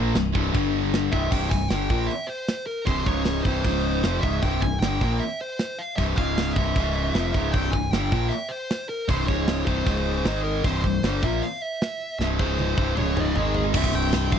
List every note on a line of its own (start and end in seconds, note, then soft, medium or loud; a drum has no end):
0.00 0.14 A#1 loud
0.00 0.14 A#2 loud
0.00 0.14 F3 loud
0.00 0.15 A#3 loud
0.14 0.33 C1 medium
0.14 0.30 C2 medium
0.14 0.31 G2 medium
0.14 snare loud
0.14 china medium
0.34 0.53 C1 medium
0.34 0.53 C2 loud
0.34 0.52 G2 loud
0.34 0.54 C3 loud
0.34 kick loud
0.53 1.08 G1 medium
0.53 1.11 G2 medium
0.53 1.11 D3 loud
0.53 1.12 G3 loud
0.53 kick loud
0.53 china medium
0.93 snare loud
0.93 china medium
1.12 1.30 C1 medium
1.12 1.30 C2 medium
1.12 1.31 G2 loud
1.12 1.32 C3 loud
1.12 1.32 E5 medium
1.12 kick loud
1.31 1.50 C1 medium
1.31 1.50 C2 loud
1.31 1.51 G2 medium
1.31 1.51 C3 loud
1.31 1.49 G5 loud
1.31 kick loud
1.31 crash loud
1.50 1.69 C1 medium
1.50 1.67 C2 medium
1.50 1.67 G2 medium
1.50 1.69 G#5 loud
1.50 kick medium
1.69 1.89 G1 medium
1.69 1.89 G2 loud
1.69 1.90 D3 loud
1.69 2.10 G5 loud
1.69 snare loud
1.69 open hi-hat medium
1.73 1.91 G3 loud
1.89 2.08 A#1 medium
1.89 2.09 A#2 medium
1.89 2.09 F3 loud
1.89 2.09 A#3 loud
1.89 kick loud
2.07 2.28 E5 loud
2.07 open hi-hat medium
2.27 2.66 C5 loud
2.48 snare loud
2.48 open hi-hat medium
2.67 2.85 A#4 medium
2.85 3.05 C1 medium
2.85 3.06 C2 medium
2.85 3.06 G2 medium
2.85 3.06 C3 loud
2.85 3.07 C5 loud
2.85 kick loud
2.85 open hi-hat medium
3.06 3.43 C#1 medium
3.06 3.45 C#2 loud
3.06 3.45 G#2 loud
3.06 3.45 C#3 loud
3.06 3.42 C#5 loud
3.06 kick loud
3.25 snare loud
3.25 open hi-hat medium
3.43 3.63 C1 medium
3.43 3.64 C2 loud
3.43 3.65 G2 loud
3.43 3.65 C3 loud
3.43 4.18 C5 loud
3.43 kick loud
3.64 4.01 C#1 loud
3.64 4.03 C#2 medium
3.64 4.04 G#2 medium
3.64 4.04 C#3 loud
3.64 kick loud
3.64 open hi-hat medium
4.03 4.22 F1 medium
4.03 4.23 F2 medium
4.03 4.23 C3 loud
4.03 4.23 F3 loud
4.03 snare loud
4.03 open hi-hat medium
4.21 4.41 C#1 medium
4.21 4.42 C#2 medium
4.21 4.42 G#2 medium
4.21 4.43 C#3 medium
4.21 4.42 E5 medium
4.21 kick medium
4.42 4.61 C1 medium
4.42 4.61 C2 medium
4.42 4.62 G2 loud
4.42 4.62 C3 loud
4.42 4.61 G5 medium
4.42 kick loud
4.42 open hi-hat medium
4.61 4.80 C1 medium
4.61 4.78 C2 medium
4.61 4.78 G2 medium
4.61 4.79 G#5 loud
4.61 kick medium
4.80 4.99 G1 loud
4.80 5.01 G2 loud
4.80 5.01 D3 loud
4.80 5.20 G5 medium
4.80 snare loud
4.80 open hi-hat medium
4.84 5.02 G3 loud
5.01 5.19 A#1 medium
5.01 5.20 A#2 medium
5.01 5.20 F3 loud
5.01 5.21 A#3 loud
5.01 kick loud
5.20 5.38 E5 loud
5.20 open hi-hat medium
5.41 5.81 C5 medium
5.59 snare loud
5.59 open hi-hat medium
5.79 5.96 F5 medium
5.96 6.16 C1 loud
5.96 6.17 C2 medium
5.96 6.18 G2 loud
5.96 6.18 C3 loud
5.96 6.02 E5 medium
5.96 kick loud
5.96 open hi-hat medium
6.16 6.53 C#1 medium
6.16 6.55 C#2 medium
6.16 6.56 G#2 loud
6.16 6.57 C#3 loud
6.16 6.53 F5 loud
6.16 kick loud
6.37 snare loud
6.37 open hi-hat medium
6.54 6.74 C1 medium
6.54 6.76 C2 loud
6.54 6.77 G2 medium
6.54 6.77 C3 loud
6.54 7.29 E5 medium
6.54 kick loud
6.76 7.12 C#1 medium
6.76 7.14 C#2 medium
6.76 7.15 G#2 loud
6.76 7.15 C#3 loud
6.76 kick loud
6.76 open hi-hat medium
7.14 7.32 F1 medium
7.14 7.34 F2 medium
7.14 7.34 C3 medium
7.14 7.35 F3 medium
7.14 snare medium
7.14 open hi-hat medium
7.32 7.52 C#1 medium
7.32 7.53 C#2 medium
7.32 7.53 G#2 medium
7.32 7.54 C#3 medium
7.32 7.51 E5 medium
7.32 kick loud
7.51 7.72 C1 medium
7.51 7.72 C2 medium
7.51 7.73 G2 loud
7.51 7.73 G5 loud
7.51 kick loud
7.51 open hi-hat medium
7.56 7.74 C3 medium
7.71 7.91 C1 medium
7.71 7.89 C2 medium
7.71 7.89 G2 medium
7.71 7.91 G#5 medium
7.71 kick medium
7.91 8.10 G1 medium
7.91 8.11 G2 medium
7.91 8.12 D3 loud
7.91 8.12 G3 loud
7.91 8.32 G5 medium
7.91 snare loud
7.91 open hi-hat medium
8.12 8.30 A#1 medium
8.12 8.31 A#2 loud
8.12 8.31 F3 loud
8.12 8.31 A#3 loud
8.12 kick loud
8.29 8.50 E5 loud
8.29 open hi-hat medium
8.49 8.89 C5 medium
8.70 snare loud
8.70 open hi-hat medium
8.89 9.09 A#4 medium
9.08 9.27 C1 medium
9.08 9.27 C2 medium
9.08 9.28 G2 medium
9.08 9.28 C3 loud
9.08 9.27 C5 medium
9.08 kick medium
9.08 open hi-hat medium
9.27 9.64 C#1 medium
9.27 9.66 C#2 loud
9.27 9.67 G#2 loud
9.27 9.67 C#3 loud
9.27 9.65 C#5 medium
9.27 kick loud
9.47 snare loud
9.47 open hi-hat medium
9.66 9.85 C1 medium
9.66 9.86 C2 loud
9.66 9.86 G2 loud
9.66 9.86 C3 loud
9.66 10.40 C5 medium
9.66 kick loud
9.86 10.22 C#1 medium
9.86 10.25 C#2 medium
9.86 10.24 G#2 loud
9.86 10.25 C#3 loud
9.86 kick loud
9.86 open hi-hat medium
10.25 10.61 G#1 loud
10.25 10.63 G#2 medium
10.25 10.64 D#3 loud
10.25 10.64 G#3 loud
10.25 snare loud
10.25 open hi-hat medium
10.44 10.65 A#4 medium
10.64 10.82 C1 medium
10.64 10.82 C2 medium
10.64 10.83 G2 medium
10.64 10.84 C3 loud
10.64 10.83 C5 medium
10.64 kick loud
10.64 open hi-hat medium
10.84 11.02 C1 medium
10.84 10.99 C2 medium
10.84 10.99 G2 medium
10.84 11.24 C5 medium
10.84 kick medium
11.03 11.21 G1 medium
11.03 11.22 G2 loud
11.03 11.22 D3 loud
11.03 11.23 G3 loud
11.03 snare loud
11.03 open hi-hat medium
11.23 11.41 A#1 medium
11.23 11.42 A#2 medium
11.23 11.42 F3 loud
11.23 11.42 A#3 loud
11.23 11.43 E5 medium
11.23 kick loud
11.42 11.62 F5 medium
11.42 open hi-hat medium
11.62 12.18 E5 loud
11.81 snare loud
11.81 open hi-hat medium
12.19 12.37 C1 medium
12.19 12.40 C2 medium
12.19 12.41 G2 medium
12.19 12.41 C3 loud
12.19 12.24 E5 medium
12.19 snare medium
12.39 12.75 C#1 medium
12.39 12.77 C#2 medium
12.39 12.78 G#2 loud
12.39 12.78 C#3 loud
12.39 12.93 C5 medium
12.39 kick loud
12.59 high tom medium
12.77 12.95 C1 medium
12.77 12.96 C2 loud
12.77 12.97 G2 loud
12.77 12.97 C3 loud
12.77 kick loud
12.97 13.33 C#1 medium
12.97 13.35 C#2 loud
12.97 13.34 G#2 loud
12.97 13.36 C#3 loud
12.97 13.16 C#5 medium
12.97 mid tom medium
13.17 13.37 C#5 medium
13.17 13.54 D#5 loud
13.17 mid tom medium
13.35 13.72 G#1 medium
13.35 13.74 G#2 medium
13.35 13.74 D#3 medium
13.35 13.74 G#3 loud
13.35 13.63 G#4 medium
13.35 floor tom medium
13.54 floor tom medium
13.74 13.92 C1 loud
13.74 14.39 C2 medium
13.74 14.39 G2 medium
13.74 14.39 C3 loud
13.74 13.95 E5 loud
13.74 kick loud
13.74 crash loud
13.74 crash medium
13.84 kick medium
13.93 14.11 C1 medium
13.93 14.32 G5 loud
13.93 crash medium
14.12 14.31 C1 loud
14.12 snare loud
14.12 crash medium
14.32 14.39 C1 medium
14.32 14.39 F5 loud
14.32 kick medium
14.32 crash medium